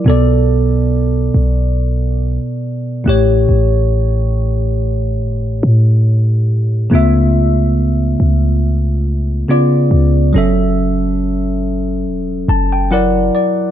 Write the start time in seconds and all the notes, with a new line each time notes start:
0.04 B1 B2 B3 A4
0.10 D5
1.34 B1
3.04 A1 A2 A3 G4
3.09 C#5
3.49 A1
5.20 G1
5.43 A1
5.63 A2
6.90 C#2 C#3 A3 B3 F4
6.95 E5
8.20 C#2
9.48 C#3 B3 F4 D5
9.91 C#2
10.33 F#1 F#3 C#4 A4
10.38 E5
12.06 E1
12.48 F#1 A5
12.73 G5
12.91 F#3 E4 A#4 D5 F#5
13.35 D5